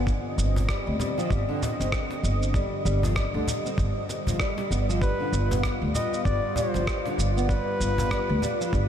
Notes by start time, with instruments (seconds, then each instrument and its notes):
Already playing: upright bass G1
0.07 analog synth pad D3 C4 D#5, kick, shaker
0.38 upright bass G1, shaker
0.56 cajon bass, shaker
0.69 nylon-string guitar G3, kick, cross-stick, cajon slap, shaker
0.87 upright bass D2
1.00 nylon-string guitar G3, cajon bass, shaker
1.18 nylon-string guitar F3, cajon slap, shaker
1.30 upright bass G1, nylon-string guitar G3, kick, shaker
1.49 nylon-string guitar D3
1.62 cajon bass, shaker
1.79 upright bass G1, nylon-string guitar C4, cajon slap, shaker
1.92 kick, cross-stick, shaker
2.10 cajon slap
2.23 upright bass G1, shaker
2.43 shaker
2.54 nylon-string guitar G3, analog synth pad G3, kick, shaker
2.85 upright bass G1, nylon-string guitar G3, shaker
3.03 nylon-string guitar F3, cajon bass, shaker
3.16 nylon-string guitar G3, kick, cross-stick, cajon slap, shaker
3.34 upright bass D2, nylon-string guitar D3
3.48 cajon bass, shaker
3.65 nylon-string guitar C4, cajon slap, shaker
3.78 upright bass G1, kick, shaker
4.09 cajon slap, shaker
4.27 upright bass G1, nylon-string guitar F3, cajon bass, shaker
4.40 nylon-string guitar G3, kick, cross-stick, shaker
4.58 nylon-string guitar G3, cajon slap
4.71 upright bass G1, nylon-string guitar B3, shaker
4.89 nylon-string guitar F3, shaker
5.02 nylon-string guitar G3, analog synth pad F4, muted trumpet B4, kick, shaker
5.20 nylon-string guitar D3
5.32 upright bass G1, shaker
5.51 nylon-string guitar B3, cajon bass, shaker
5.63 kick, cross-stick, cajon slap, shaker
5.82 upright bass D2
5.94 muted trumpet D#5, cajon bass, shaker
6.13 cajon slap, shaker
6.25 upright bass G1, nylon-string guitar G3, muted trumpet D5, kick, shaker
6.56 nylon-string guitar G3, muted trumpet C5, cajon bass, shaker
6.74 upright bass G1, nylon-string guitar F3, cajon slap, shaker
6.87 nylon-string guitar G3, kick, cross-stick, shaker
7.05 nylon-string guitar D3, cajon slap
7.18 upright bass G1, shaker
7.37 nylon-string guitar B3, shaker
7.49 muted trumpet B4, kick, shaker
7.80 upright bass G1, shaker
7.98 cajon bass, shaker
8.11 nylon-string guitar G3, kick, cross-stick, cajon slap, shaker
8.29 upright bass D2
8.42 nylon-string guitar G3, cajon bass, shaker
8.60 nylon-string guitar F3, cajon slap, shaker
8.73 upright bass G1, nylon-string guitar G3, kick, shaker